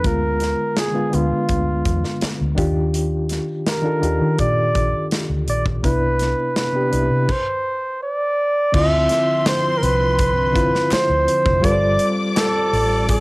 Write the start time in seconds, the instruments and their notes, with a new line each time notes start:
0.03 fingered electric bass D2, reed electric piano D3 G#3 B3 F4, flugelhorn A#4, kick, closed hi-hat
0.40 snare, closed hi-hat
0.77 flugelhorn G#4, snare, closed hi-hat
0.92 reed electric piano D3 G#3 B3 F4
1.10 fingered electric bass D2, reed electric piano D3 G#3 B3 D4, closed hi-hat
1.14 flugelhorn F4
1.32 fingered electric bass D3
1.49 fingered electric bass D2, kick, closed hi-hat
1.85 fingered electric bass E2, kick, closed hi-hat
2.04 snare
2.21 muted fingered electric bass stroke, snare, closed hi-hat
2.41 fingered electric bass D2
2.55 fingered electric bass D#2, reed electric piano D#3 D4 F4 G4, kick, closed hi-hat
2.94 closed hi-hat
3.29 snare, closed hi-hat
3.67 flugelhorn A#4, snare, closed hi-hat
3.82 reed electric piano D#3 D4 F4 A4
4.00 fingered electric bass D#2, reed electric piano D#3 D4 F4 G4, closed hi-hat
4.21 fingered electric bass D#3
4.39 fingered electric bass A#2, flugelhorn D5, kick, closed hi-hat
4.75 fingered electric bass A#1, kick, closed hi-hat
5.11 snare, closed hi-hat
5.30 fingered electric bass D2
5.48 fingered electric bass A#1, flugelhorn D5, closed hi-hat
5.66 kick
5.81 fingered electric bass C2, reed electric piano C3 B3 D4 E4, flugelhorn B4, kick, closed hi-hat
6.19 snare, closed hi-hat
6.56 flugelhorn B4, snare, closed hi-hat
6.72 reed electric piano C3 B3 D4 G4
6.90 fingered electric bass C2, reed electric piano C3 B3 D4 E4, closed hi-hat
7.11 fingered electric bass C3
7.29 flugelhorn C5, kick, crash
8.03 flugelhorn D5
8.72 fingered electric bass D2, reed electric piano D3 C4 E4 F4, string machine D3 F3 C4 E5, string section C4 C6, flugelhorn E5, kick, crash
9.09 snare, closed hi-hat
9.46 flugelhorn C5, snare, clap, closed hi-hat
9.78 flugelhorn A#4
9.82 fingered electric bass C2, flugelhorn B4, closed hi-hat
10.19 kick, closed hi-hat
10.52 reed electric piano D3 C4 E4 F4, kick, closed hi-hat
10.75 snare
10.91 flugelhorn C5, muted fingered electric bass stroke, snare, clap, closed hi-hat
11.10 fingered electric bass D2
11.28 closed hi-hat
11.46 fingered electric bass F1, kick
11.61 fingered electric bass G1, reed electric piano G3 F4 A4 B4, string machine G3 F4, string section D5 D6, flugelhorn D5, kick, closed hi-hat
11.71 reed electric piano C5
11.99 closed hi-hat
12.37 flugelhorn A4, snare, clap, closed hi-hat
12.73 fingered electric bass A1, open hi-hat
13.09 flugelhorn A4, kick, closed hi-hat